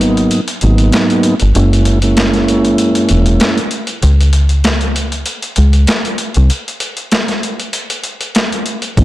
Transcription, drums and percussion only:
0.01 closed hi-hat medium
0.17 closed hi-hat soft
0.31 closed hi-hat medium
0.48 closed hi-hat medium
0.61 closed hi-hat medium
0.78 closed hi-hat soft
0.92 snare loud
0.92 snare medium
0.92 closed hi-hat medium
1.10 closed hi-hat medium
1.23 closed hi-hat medium
1.40 closed hi-hat medium
1.55 closed hi-hat loud
1.73 closed hi-hat medium
1.85 closed hi-hat medium
2.02 closed hi-hat medium
2.17 snare loud
2.17 snare medium
2.17 closed hi-hat medium
2.33 snare soft
2.33 closed hi-hat soft
2.48 closed hi-hat medium
2.65 closed hi-hat soft
2.78 closed hi-hat medium
2.95 closed hi-hat medium
3.09 closed hi-hat medium
3.26 closed hi-hat medium
3.40 snare loud
3.40 snare medium
3.40 closed hi-hat medium
3.58 closed hi-hat medium
3.71 closed hi-hat medium
3.87 closed hi-hat medium
4.02 closed hi-hat loud
4.21 closed hi-hat medium
4.33 closed hi-hat medium
4.49 closed hi-hat medium
4.64 snare loud
4.64 snare medium
4.64 closed hi-hat medium
4.81 closed hi-hat soft
4.96 closed hi-hat medium
5.12 closed hi-hat soft
5.26 closed hi-hat medium
5.42 closed hi-hat medium
5.56 closed hi-hat medium
5.73 closed hi-hat medium
5.87 snare loud
5.87 snare medium
5.87 closed hi-hat medium
6.05 closed hi-hat medium
6.18 closed hi-hat medium
6.34 closed hi-hat medium
6.50 closed hi-hat medium
6.68 closed hi-hat medium
6.80 closed hi-hat medium
6.97 closed hi-hat medium
7.12 snare loud
7.12 snare medium
7.12 closed hi-hat medium
7.28 snare soft
7.28 closed hi-hat soft
7.43 closed hi-hat medium
7.60 closed hi-hat soft
7.73 closed hi-hat medium
7.90 closed hi-hat medium
8.04 closed hi-hat medium
8.21 closed hi-hat medium
8.35 snare loud
8.35 snare medium
8.35 closed hi-hat medium
8.52 closed hi-hat medium
8.66 closed hi-hat medium
8.82 closed hi-hat medium
8.97 kick loud
8.97 closed hi-hat medium

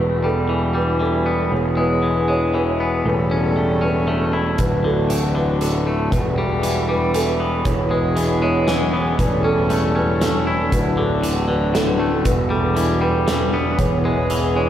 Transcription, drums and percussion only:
4.58 kick medium
4.58 closed hi-hat soft
5.10 closed hi-hat soft
5.61 closed hi-hat soft
6.12 kick medium
6.12 closed hi-hat soft
6.63 closed hi-hat soft
7.14 closed hi-hat soft
7.65 kick medium
7.65 closed hi-hat soft
8.17 closed hi-hat soft
8.68 snare medium
8.68 closed hi-hat soft
9.19 kick medium
9.19 closed hi-hat soft
9.70 closed hi-hat soft
10.21 snare medium
10.21 closed hi-hat soft
10.72 kick medium
10.72 closed hi-hat soft
11.23 closed hi-hat soft
11.75 snare medium
11.75 closed hi-hat soft
12.25 kick medium
12.25 closed hi-hat medium
12.77 closed hi-hat soft
13.28 snare medium
13.28 closed hi-hat soft
13.79 kick medium
13.79 closed hi-hat soft
14.30 closed hi-hat soft

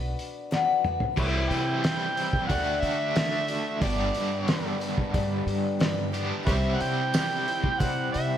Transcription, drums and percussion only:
0.19 open hi-hat soft
0.52 snare medium
0.84 mid tom medium
1.00 floor tom medium
1.17 kick loud
1.17 crash loud
1.51 open hi-hat soft
1.84 snare loud
1.84 open hi-hat medium
2.17 open hi-hat soft
2.33 kick medium
2.50 kick loud
2.50 open hi-hat medium
2.83 open hi-hat soft
3.16 snare loud
3.16 open hi-hat medium
3.48 open hi-hat medium
3.82 kick loud
3.82 open hi-hat medium
4.15 open hi-hat medium
4.48 snare medium
4.48 open hi-hat medium
4.81 open hi-hat medium
4.98 kick medium
5.14 kick loud
5.14 open hi-hat medium
5.48 open hi-hat soft
5.80 snare loud
5.80 open hi-hat medium
6.14 open hi-hat soft
6.47 kick loud
6.47 open hi-hat medium
6.80 open hi-hat soft
7.14 snare loud
7.14 open hi-hat medium
7.14 tambourine medium
7.48 open hi-hat soft
7.64 kick medium
7.80 kick loud
7.80 open hi-hat medium
8.14 open hi-hat medium

